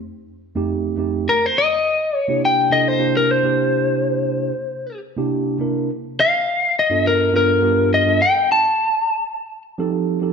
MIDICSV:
0, 0, Header, 1, 3, 480
1, 0, Start_track
1, 0, Tempo, 577478
1, 1051, Time_signature, 4, 2, 24, 8
1, 8585, End_track
2, 0, Start_track
2, 0, Title_t, "Lead electric guitar"
2, 0, Program_c, 0, 29
2, 1073, Note_on_c, 0, 70, 86
2, 1213, Note_off_c, 0, 70, 0
2, 1213, Note_on_c, 0, 72, 79
2, 1304, Note_off_c, 0, 72, 0
2, 1315, Note_on_c, 0, 75, 107
2, 1797, Note_off_c, 0, 75, 0
2, 1797, Note_on_c, 0, 73, 107
2, 2001, Note_off_c, 0, 73, 0
2, 2038, Note_on_c, 0, 79, 77
2, 2257, Note_off_c, 0, 79, 0
2, 2264, Note_on_c, 0, 75, 85
2, 2395, Note_off_c, 0, 75, 0
2, 2395, Note_on_c, 0, 72, 73
2, 2620, Note_off_c, 0, 72, 0
2, 2634, Note_on_c, 0, 70, 77
2, 2751, Note_off_c, 0, 70, 0
2, 2751, Note_on_c, 0, 72, 85
2, 4148, Note_off_c, 0, 72, 0
2, 5156, Note_on_c, 0, 77, 104
2, 5609, Note_off_c, 0, 77, 0
2, 5645, Note_on_c, 0, 75, 69
2, 5861, Note_off_c, 0, 75, 0
2, 5879, Note_on_c, 0, 70, 88
2, 6098, Note_off_c, 0, 70, 0
2, 6121, Note_on_c, 0, 70, 83
2, 6572, Note_off_c, 0, 70, 0
2, 6601, Note_on_c, 0, 75, 85
2, 6818, Note_off_c, 0, 75, 0
2, 6832, Note_on_c, 0, 79, 84
2, 7054, Note_off_c, 0, 79, 0
2, 7080, Note_on_c, 0, 81, 100
2, 7996, Note_off_c, 0, 81, 0
2, 8585, End_track
3, 0, Start_track
3, 0, Title_t, "Tine electric piano"
3, 0, Program_c, 1, 4
3, 454, Note_on_c, 1, 41, 90
3, 459, Note_on_c, 1, 57, 86
3, 463, Note_on_c, 1, 60, 84
3, 467, Note_on_c, 1, 63, 88
3, 474, Note_on_c, 1, 67, 112
3, 785, Note_off_c, 1, 41, 0
3, 788, Note_off_c, 1, 57, 0
3, 790, Note_off_c, 1, 60, 0
3, 791, Note_off_c, 1, 63, 0
3, 795, Note_off_c, 1, 67, 0
3, 805, Note_on_c, 1, 41, 83
3, 807, Note_on_c, 1, 57, 65
3, 812, Note_on_c, 1, 60, 71
3, 812, Note_on_c, 1, 63, 69
3, 820, Note_on_c, 1, 67, 90
3, 1048, Note_off_c, 1, 41, 0
3, 1049, Note_off_c, 1, 57, 0
3, 1051, Note_off_c, 1, 63, 0
3, 1052, Note_off_c, 1, 60, 0
3, 1056, Note_off_c, 1, 67, 0
3, 1894, Note_on_c, 1, 48, 75
3, 1896, Note_on_c, 1, 58, 77
3, 1901, Note_on_c, 1, 62, 75
3, 1903, Note_on_c, 1, 64, 80
3, 1903, Note_on_c, 1, 67, 86
3, 2225, Note_off_c, 1, 48, 0
3, 2226, Note_off_c, 1, 58, 0
3, 2228, Note_off_c, 1, 62, 0
3, 2229, Note_off_c, 1, 64, 0
3, 2230, Note_off_c, 1, 67, 0
3, 2245, Note_on_c, 1, 48, 86
3, 2247, Note_on_c, 1, 58, 74
3, 2251, Note_on_c, 1, 62, 82
3, 2257, Note_on_c, 1, 64, 80
3, 2261, Note_on_c, 1, 69, 90
3, 2473, Note_off_c, 1, 48, 0
3, 2474, Note_off_c, 1, 58, 0
3, 2475, Note_off_c, 1, 62, 0
3, 2479, Note_off_c, 1, 64, 0
3, 2480, Note_off_c, 1, 69, 0
3, 2482, Note_on_c, 1, 48, 83
3, 2486, Note_on_c, 1, 58, 74
3, 2487, Note_on_c, 1, 62, 81
3, 2491, Note_on_c, 1, 64, 73
3, 2497, Note_on_c, 1, 67, 92
3, 2829, Note_off_c, 1, 48, 0
3, 2831, Note_off_c, 1, 58, 0
3, 2831, Note_off_c, 1, 62, 0
3, 2833, Note_off_c, 1, 64, 0
3, 2836, Note_off_c, 1, 67, 0
3, 2852, Note_on_c, 1, 48, 78
3, 2853, Note_on_c, 1, 58, 70
3, 2858, Note_on_c, 1, 62, 74
3, 2860, Note_on_c, 1, 64, 70
3, 2862, Note_on_c, 1, 67, 86
3, 3744, Note_off_c, 1, 48, 0
3, 3745, Note_off_c, 1, 58, 0
3, 3748, Note_off_c, 1, 62, 0
3, 3748, Note_off_c, 1, 64, 0
3, 3750, Note_off_c, 1, 67, 0
3, 4295, Note_on_c, 1, 58, 80
3, 4296, Note_on_c, 1, 48, 90
3, 4302, Note_on_c, 1, 62, 90
3, 4304, Note_on_c, 1, 64, 89
3, 4306, Note_on_c, 1, 67, 105
3, 4625, Note_off_c, 1, 48, 0
3, 4625, Note_off_c, 1, 58, 0
3, 4629, Note_off_c, 1, 62, 0
3, 4630, Note_off_c, 1, 64, 0
3, 4631, Note_off_c, 1, 67, 0
3, 4645, Note_on_c, 1, 48, 78
3, 4652, Note_on_c, 1, 58, 70
3, 4653, Note_on_c, 1, 62, 72
3, 4661, Note_on_c, 1, 64, 77
3, 4662, Note_on_c, 1, 70, 79
3, 4887, Note_off_c, 1, 48, 0
3, 4891, Note_off_c, 1, 58, 0
3, 4892, Note_off_c, 1, 62, 0
3, 4895, Note_off_c, 1, 64, 0
3, 4896, Note_off_c, 1, 70, 0
3, 5733, Note_on_c, 1, 43, 82
3, 5734, Note_on_c, 1, 59, 70
3, 5737, Note_on_c, 1, 62, 76
3, 5743, Note_on_c, 1, 65, 77
3, 5745, Note_on_c, 1, 69, 86
3, 6064, Note_off_c, 1, 43, 0
3, 6064, Note_off_c, 1, 59, 0
3, 6066, Note_off_c, 1, 62, 0
3, 6069, Note_off_c, 1, 65, 0
3, 6070, Note_off_c, 1, 69, 0
3, 6091, Note_on_c, 1, 43, 84
3, 6093, Note_on_c, 1, 59, 86
3, 6098, Note_on_c, 1, 62, 80
3, 6100, Note_on_c, 1, 65, 84
3, 6103, Note_on_c, 1, 69, 89
3, 6315, Note_off_c, 1, 43, 0
3, 6316, Note_off_c, 1, 59, 0
3, 6318, Note_off_c, 1, 62, 0
3, 6319, Note_off_c, 1, 65, 0
3, 6321, Note_off_c, 1, 69, 0
3, 6325, Note_on_c, 1, 43, 85
3, 6330, Note_on_c, 1, 59, 81
3, 6334, Note_on_c, 1, 65, 74
3, 6335, Note_on_c, 1, 62, 74
3, 6343, Note_on_c, 1, 67, 94
3, 6670, Note_off_c, 1, 43, 0
3, 6672, Note_off_c, 1, 59, 0
3, 6674, Note_off_c, 1, 65, 0
3, 6675, Note_off_c, 1, 62, 0
3, 6679, Note_off_c, 1, 67, 0
3, 6693, Note_on_c, 1, 43, 84
3, 6696, Note_on_c, 1, 59, 68
3, 6704, Note_on_c, 1, 62, 66
3, 6706, Note_on_c, 1, 69, 85
3, 6708, Note_on_c, 1, 65, 70
3, 6807, Note_off_c, 1, 43, 0
3, 6808, Note_off_c, 1, 59, 0
3, 6812, Note_off_c, 1, 62, 0
3, 6813, Note_off_c, 1, 69, 0
3, 6814, Note_off_c, 1, 65, 0
3, 8131, Note_on_c, 1, 53, 109
3, 8133, Note_on_c, 1, 60, 93
3, 8141, Note_on_c, 1, 63, 92
3, 8144, Note_on_c, 1, 67, 86
3, 8146, Note_on_c, 1, 69, 117
3, 8462, Note_off_c, 1, 53, 0
3, 8464, Note_off_c, 1, 60, 0
3, 8467, Note_off_c, 1, 63, 0
3, 8469, Note_off_c, 1, 67, 0
3, 8470, Note_off_c, 1, 69, 0
3, 8489, Note_on_c, 1, 53, 75
3, 8489, Note_on_c, 1, 60, 69
3, 8493, Note_on_c, 1, 63, 76
3, 8494, Note_on_c, 1, 67, 76
3, 8502, Note_on_c, 1, 69, 97
3, 8585, Note_off_c, 1, 53, 0
3, 8585, Note_off_c, 1, 60, 0
3, 8585, Note_off_c, 1, 63, 0
3, 8585, Note_off_c, 1, 67, 0
3, 8585, Note_off_c, 1, 69, 0
3, 8585, End_track
0, 0, End_of_file